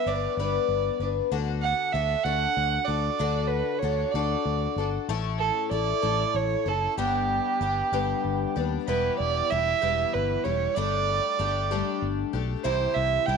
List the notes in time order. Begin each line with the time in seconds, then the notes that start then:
0.06 G1 G3 B3 D4 B4 D5
0.37 G1 G3 B3 D4 B4 D5
0.68 G1
0.99 G1 B3 D4 B4
1.31 D2 D3 D4 F#4 A4
1.63 F#5
1.93 D2 D3 D4 F#4 A4 E5
2.24 D2 D3 D4 F#4 A4 F#5
2.57 D2
2.85 D2 A4 D5
2.89 D4 F#4
3.19 D2 D3 D4 F#4 A4
3.48 B4
3.79 D2 D3 C#5
3.84 D4 F#4 A4
4.12 D2 F#4 A4 D5
4.16 D3 D4
4.45 D2
4.76 G1 F#4 A4
4.80 D4
5.08 A1 A2 A3 C#4 E4 A4
5.39 A4
5.71 A1 A3 E4 A4 D5
6.02 A1 A2 A3 E4 A4
6.34 A1 C#5
6.66 F#1 C#4 E4 A4
6.97 G1 G2 D3 G3 B3 D4 G4
7.60 G1 G3 B3 D4 G4
7.92 G1 G2 D3 G3 B3 D4 G4
8.24 G1
8.56 D#2 G3 B3 D4 G4
8.87 E1 E2 B2 E3 G3 E4 G4 B4
9.19 E1 D5
9.50 E1 E3 G3 E4 G4 E5
9.82 E1 E2 B2 E3 G3 E4 G4
10.14 G1 B4
10.44 E1 E3 G3 E4 G4 C#5
10.76 G1 G3 A3 D4 G4 D5
11.39 G1 G3 A3 D4 G4
11.71 G3 A3 D4 G4
12.02 G1
12.33 B1 A3 D4 G4
12.64 C2 C3 E3 G3 E4 G4 C5
12.95 C2 E5
13.26 C2 E3 G3 E4 G4 G5